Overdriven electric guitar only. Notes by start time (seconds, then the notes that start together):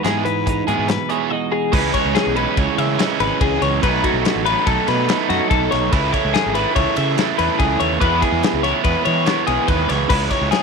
0.04 G#3 B3 E4 G#4
0.26 muted overdriven electric guitar stroke
0.47 muted overdriven electric guitar stroke
0.68 G#3 B3 E4 G#4
0.89 muted overdriven electric guitar stroke
1.10 G#3 B3 E4 G#4
1.31 muted overdriven electric guitar stroke
1.51 muted overdriven electric guitar stroke
1.72 C#3 E3 G#3 C#4
2.36 C#3 E3 G#3 C#4
2.98 C#3 E3 G#3 C#4
3.83 B2 F#3 A3 D#4
4.46 B2 F#3 A3 D#4
5.08 B2 F#3 A3 D#4
5.92 C#3 E3 A3 E4
6.54 C#3 E3 A3 E4
7.17 C#3 E3 A3 E4
8.00 E3 G#3 B3 E4
8.63 E3 G#3 B3 E4
9.25 E3 G#3 B3 E4
10.10 C#3 G#3 C#4 E4